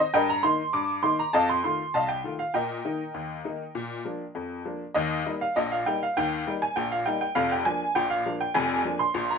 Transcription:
0.00 0.14 D#5 loud
0.14 0.39 G2 loud
0.14 0.28 A#4 loud
0.14 0.28 D#5 loud
0.14 0.29 G5 loud
0.29 0.44 A#5 loud
0.43 0.60 D#3 medium
0.43 0.60 A#3 medium
0.43 0.61 D#4 medium
0.43 0.67 C6 loud
0.73 0.99 G2 medium
0.73 1.02 D6 loud
1.03 1.20 D#3 medium
1.03 1.20 A#3 medium
1.03 1.20 D#4 medium
1.03 1.18 C6 loud
1.19 1.34 A#5 medium
1.33 1.59 F2 loud
1.33 1.48 D#5 loud
1.33 1.48 F5 medium
1.33 1.48 A5 loud
1.49 1.63 C6 loud
1.64 1.81 D#3 medium
1.64 1.81 A3 medium
1.64 1.81 F4 medium
1.64 1.92 C6 loud
1.94 2.20 C2 medium
1.94 2.09 D#5 medium
1.94 2.08 F5 medium
1.94 2.09 A5 loud
2.08 2.33 G5 medium
2.24 2.41 D#3 soft
2.24 2.41 A3 medium
2.24 2.41 F4 medium
2.39 2.54 F5 medium
2.54 2.80 A#2 medium
2.54 4.62 A#4 medium
2.54 4.62 D#5 medium
2.54 4.23 G5 medium
2.85 3.01 D#3 medium
2.85 3.01 A#3 soft
2.85 3.02 D#4 medium
3.14 3.40 D#2 medium
3.45 3.61 D#3 soft
3.45 3.61 A#3 soft
3.45 3.62 D#4 medium
3.75 4.01 A#2 medium
4.05 4.22 F3 soft
4.05 4.22 A#3 soft
4.05 4.22 D4 soft
4.35 4.61 F2 medium
4.65 4.82 F3 soft
4.65 4.82 A#3 soft
4.65 4.82 D4 soft
4.94 5.21 D#2 loud
4.94 5.21 D#3 medium
4.94 5.31 D#5 loud
5.26 5.43 G3 medium
5.26 5.43 A#3 medium
5.26 5.43 D#4 medium
5.41 5.56 F5 medium
5.56 5.82 A#1 medium
5.56 5.82 A#2 medium
5.56 5.71 D#5 medium
5.72 5.86 F5 medium
5.86 6.03 G3 medium
5.86 6.03 A#3 medium
5.86 6.03 D#4 medium
5.86 6.01 G5 loud
6.03 6.17 F5 medium
6.17 6.42 D#2 loud
6.17 6.42 D#3 medium
6.17 6.53 G5 loud
6.47 6.63 G3 medium
6.47 6.63 A#3 medium
6.47 6.64 D#4 medium
6.62 6.77 G#5 loud
6.76 7.02 A#1 medium
6.76 7.02 A#2 medium
6.76 6.91 G5 loud
6.92 7.06 F5 medium
7.06 7.23 G3 medium
7.06 7.23 A#3 medium
7.06 7.23 D#4 medium
7.06 7.20 G5 loud
7.21 7.36 G5 loud
7.35 7.61 F1 medium
7.35 7.61 F2 loud
7.35 7.51 F5 loud
7.52 7.66 G5 medium
7.65 7.82 F3 medium
7.65 7.82 A#3 medium
7.65 7.83 D4 medium
7.65 7.94 G#5 loud
7.95 8.21 A#1 medium
7.95 8.21 A#2 medium
7.95 8.10 G5 loud
8.10 8.34 F5 loud
8.26 8.42 F3 medium
8.26 8.42 A#3 medium
8.26 8.43 D4 medium
8.41 8.55 G5 loud
8.54 8.81 F1 loud
8.54 8.80 F2 loud
8.54 8.97 G#5 loud
8.85 9.01 F3 medium
8.85 9.02 A#3 medium
8.85 9.02 D4 medium
8.99 9.28 C6 loud
9.14 9.38 A#1 medium
9.14 9.38 A#2 medium
9.30 9.38 A#5 medium

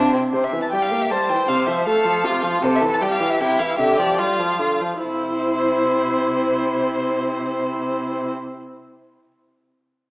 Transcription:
0.00 0.11 C3 soft
0.00 0.13 D4 soft
0.13 0.21 C4 soft
0.33 0.54 C3 soft
0.33 0.64 C3 soft
0.33 0.46 C5 medium
0.44 0.61 E5 soft
0.53 0.74 E3 soft
0.62 0.66 A5 medium
0.72 0.92 G3 soft
0.72 1.13 G4 soft
0.72 0.83 G5 soft
0.82 1.03 F5 soft
0.91 1.12 A#3 soft
1.02 1.12 E5 soft
1.10 1.31 G3 soft
1.10 1.87 C5 soft
1.10 1.31 A5 medium
1.29 1.48 E3 soft
1.29 1.50 G5 medium
1.48 1.69 C3 soft
1.48 1.79 C3 soft
1.48 1.67 F5 medium
1.68 1.88 F3 soft
1.68 1.86 E5 medium
1.86 2.06 A3 soft
1.86 2.27 A4 medium
1.86 2.43 F5 medium
2.05 2.25 F3 soft
2.24 2.45 C3 soft
2.24 2.65 F4 soft
2.43 2.62 F3 soft
2.62 2.83 C3 soft
2.62 2.94 C3 medium
2.62 3.02 A4 soft
2.62 2.68 C5 medium
2.75 2.82 E5 medium
2.82 3.03 E3 soft
2.93 2.97 A5 medium
3.01 3.22 G3 soft
3.01 3.40 G4 soft
3.01 3.06 G5 medium
3.11 3.32 F5 medium
3.20 3.43 E3 soft
3.30 3.42 E5 medium
3.40 3.62 C3 soft
3.40 3.78 E4 soft
3.40 3.61 G5 medium
3.59 3.79 E3 soft
3.59 3.81 F5 medium
3.79 4.11 C3 soft
3.79 4.00 D3 soft
3.79 4.20 G4 soft
3.79 3.99 E5 medium
3.99 4.21 F3 soft
3.99 4.21 D5 medium
4.18 4.40 G3 soft
4.18 4.59 F4 soft
4.18 4.82 F5 medium
4.39 4.61 F3 soft
4.59 4.82 D3 soft
4.59 4.81 F4 soft
4.81 5.02 F3 soft
5.02 8.29 C3 soft
5.02 8.28 E4 soft
5.02 8.28 C5 soft
5.02 8.29 C5 soft

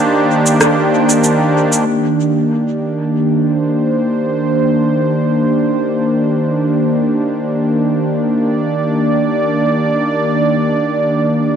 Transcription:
0.00 11.56 D#3 medium
0.00 11.56 A#3 medium
0.00 11.56 D4 medium
0.00 11.56 G4 medium
0.00 1.87 C5 medium
0.46 cabasa medium
0.61 cross-stick medium
0.61 cabasa soft
1.09 cabasa medium
1.24 cabasa soft
1.73 cabasa medium
3.33 8.46 C5 medium
8.28 11.56 D5 medium

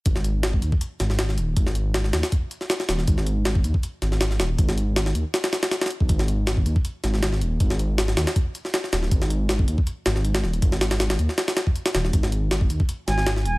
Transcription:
0.06 0.61 G#1 loud
0.06 kick loud
0.06 closed hi-hat medium
0.16 snare medium
0.24 closed hi-hat medium
0.43 snare loud
0.43 closed hi-hat medium
0.53 kick medium
0.62 0.72 D#2 medium
0.62 closed hi-hat medium
0.72 kick medium
0.81 closed hi-hat medium
1.00 1.39 G#1 medium
1.00 snare soft
1.00 closed hi-hat medium
1.10 snare soft
1.19 snare loud
1.19 closed hi-hat medium
1.29 snare soft
1.38 1.55 D#1 medium
1.38 closed hi-hat medium
1.57 2.12 G#1 medium
1.57 kick loud
1.57 closed hi-hat medium
1.67 snare medium
1.75 closed hi-hat medium
1.94 snare loud
1.94 closed hi-hat medium
2.04 snare soft
2.13 2.22 D#2 medium
2.13 snare loud
2.13 closed hi-hat medium
2.23 snare loud
2.23 closed hi-hat medium
2.32 kick loud
2.32 closed hi-hat medium
2.51 closed hi-hat medium
2.61 snare soft
2.70 snare loud
2.70 closed hi-hat medium
2.80 snare medium
2.89 3.06 D#1 medium
2.89 snare medium
2.89 closed hi-hat medium
2.99 snare soft
3.08 3.63 G#1 medium
3.08 kick loud
3.08 closed hi-hat medium
3.18 snare soft
3.27 closed hi-hat medium
3.45 snare loud
3.45 closed hi-hat medium
3.55 kick medium
3.64 3.73 D#2 medium
3.64 closed hi-hat medium
3.74 kick medium
3.83 closed hi-hat medium
4.02 4.41 G#1 medium
4.02 snare soft
4.02 closed hi-hat medium
4.12 snare soft
4.21 snare loud
4.21 closed hi-hat medium
4.31 snare soft
4.40 4.57 D#1 medium
4.40 snare loud
4.40 closed hi-hat medium
4.59 5.14 G#1 medium
4.59 kick loud
4.59 closed hi-hat medium
4.69 snare medium
4.78 closed hi-hat medium
4.96 snare loud
4.96 closed hi-hat medium
5.06 snare medium
5.15 5.24 D#2 medium
5.15 closed hi-hat medium
5.34 snare loud
5.34 closed hi-hat medium
5.44 snare medium
5.44 closed hi-hat medium
5.53 snare medium
5.53 closed hi-hat medium
5.63 snare loud
5.63 closed hi-hat medium
5.71 snare medium
5.71 closed hi-hat medium
5.81 snare medium
5.81 closed hi-hat medium
5.86 snare medium
5.86 closed hi-hat medium
5.90 closed hi-hat medium
6.00 6.09 B1 medium
6.00 kick medium
6.09 6.65 G#1 medium
6.09 kick loud
6.09 closed hi-hat medium
6.19 snare soft
6.28 closed hi-hat medium
6.47 snare loud
6.47 closed hi-hat medium
6.57 kick medium
6.66 6.75 D#2 medium
6.66 closed hi-hat medium
6.76 kick medium
6.85 closed hi-hat medium
7.04 7.43 G#1 medium
7.04 snare soft
7.04 closed hi-hat medium
7.14 snare soft
7.23 snare loud
7.23 closed hi-hat medium
7.33 snare soft
7.41 7.59 D#1 medium
7.41 closed hi-hat medium
7.60 8.16 G#1 loud
7.60 kick loud
7.60 closed hi-hat medium
7.70 snare medium
7.79 closed hi-hat medium
7.98 snare loud
7.98 closed hi-hat medium
8.08 snare medium
8.17 8.26 D#2 medium
8.17 snare loud
8.17 closed hi-hat medium
8.27 snare loud
8.27 closed hi-hat medium
8.36 kick loud
8.36 closed hi-hat medium
8.55 closed hi-hat medium
8.65 snare soft
8.74 snare loud
8.74 closed hi-hat medium
8.84 snare medium
8.93 9.10 D#1 medium
8.93 snare loud
8.93 closed hi-hat medium
9.03 snare soft
9.11 9.67 G#1 loud
9.11 kick loud
9.11 closed hi-hat medium
9.22 snare soft
9.30 closed hi-hat medium
9.49 snare loud
9.49 closed hi-hat medium
9.59 kick medium
9.68 9.77 D#2 medium
9.68 closed hi-hat medium
9.78 kick medium
9.87 closed hi-hat medium
10.06 10.45 G#1 medium
10.06 snare loud
10.06 closed hi-hat medium
10.16 snare soft
10.25 closed hi-hat medium
10.35 snare loud
10.35 closed hi-hat medium
10.43 10.61 D#1 medium
10.43 snare soft
10.53 closed hi-hat medium
10.62 11.18 G#1 loud
10.62 kick loud
10.62 closed hi-hat medium
10.72 snare medium
10.81 snare loud
10.81 closed hi-hat medium
10.91 snare medium
10.91 closed hi-hat medium
11.00 snare loud
11.00 closed hi-hat medium
11.10 snare loud
11.10 closed hi-hat medium
11.19 11.28 D#2 medium
11.19 closed hi-hat medium
11.29 snare medium
11.38 snare loud
11.38 closed hi-hat medium
11.48 snare loud
11.48 closed hi-hat medium
11.57 snare medium
11.57 closed hi-hat medium
11.67 kick medium
11.76 closed hi-hat medium
11.86 snare loud
11.86 closed hi-hat medium
11.95 12.12 D#1 medium
11.95 snare medium
11.95 closed hi-hat medium
12.05 snare soft
12.13 12.69 G#1 loud
12.13 kick loud
12.13 closed hi-hat medium
12.23 snare medium
12.32 closed hi-hat medium
12.51 snare loud
12.51 closed hi-hat medium
12.61 kick medium
12.70 12.79 D#2 medium
12.70 closed hi-hat medium
12.80 kick medium
12.89 closed hi-hat medium
13.08 13.47 G#1 medium
13.08 13.31 G#5 medium
13.08 snare soft
13.08 closed hi-hat medium
13.18 snare soft
13.27 snare loud
13.27 closed hi-hat medium
13.37 snare soft
13.45 13.58 D#1 medium
13.45 13.58 G#5 medium
13.45 closed hi-hat medium

